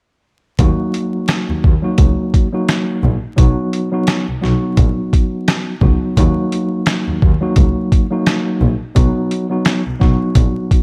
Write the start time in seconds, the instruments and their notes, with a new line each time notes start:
0.59 double bass D#2, tine electric piano F#3 A#3 D#4 F#4, kick, closed hi-hat
0.94 closed hi-hat
1.28 cross-stick, snare, closed hi-hat
1.50 double bass D#2
1.64 double bass D#2, kick
1.82 tine electric piano F#3 A#3 D#4 F#4
1.98 double bass C#2, kick, closed hi-hat
2.34 kick, closed hi-hat
2.53 tine electric piano F#3 A#3 D#4 F#4
2.69 cross-stick, snare, closed hi-hat
3.04 double bass A#1
3.37 double bass B1, tine electric piano F#3 B3 D#4 F#4, kick, closed hi-hat
3.73 closed hi-hat
3.92 tine electric piano F#3 B3 D#4 F#4
4.07 cross-stick, snare, closed hi-hat
4.29 double bass B1
4.42 double bass B1, tine electric piano F#3 B3 D#4 F#4, snare
4.77 double bass A#1, kick, closed hi-hat
5.13 kick, closed hi-hat
5.48 cross-stick, snare, closed hi-hat
5.81 double bass C#2, tine electric piano F#3 B3 D#4 F#4, kick
6.17 double bass D#2, tine electric piano F#3 A#3 D#4 F#4, kick, closed hi-hat
6.52 closed hi-hat
6.86 cross-stick, snare, closed hi-hat
7.08 double bass D#2
7.22 double bass D#2, kick
7.41 tine electric piano F#3 A#3 D#4 F#4
7.56 double bass C#2, kick, closed hi-hat
7.92 kick, closed hi-hat
8.10 tine electric piano F#3 A#3 D#4 F#4
8.26 cross-stick, snare, closed hi-hat
8.62 double bass A#1
8.95 double bass B1, tine electric piano F#3 B3 D#4 F#4, kick, closed hi-hat
9.31 closed hi-hat
9.50 tine electric piano F#3 B3 D#4 F#4
9.65 cross-stick, snare, closed hi-hat
9.87 double bass B1
9.99 double bass B1, tine electric piano F#3 B3 D#4 F#4, kick, snare
10.35 double bass A#1, kick, closed hi-hat
10.71 kick, closed hi-hat